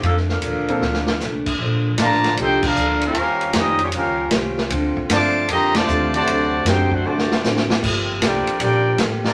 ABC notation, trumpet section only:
X:1
M:4/4
L:1/8
Q:"Swing" 1/4=154
K:Bb
V:1 name="Trumpet section"
z8 | z2 [Fdab]2 [EAcg] [DABf]2 [_DGBf]- | [_DGBf]2 [DGBe] [B,FG_d] [DGBf]2 z2 | z2 [cfad']2 [Gceb] [Fcda]2 [_Gcda]- |
[_Gcda]2 [EAc=g] [DAc^f] [^Fcda]2 z2 | z2 [FBdg]2 [FBdg]2 z [FBda] |]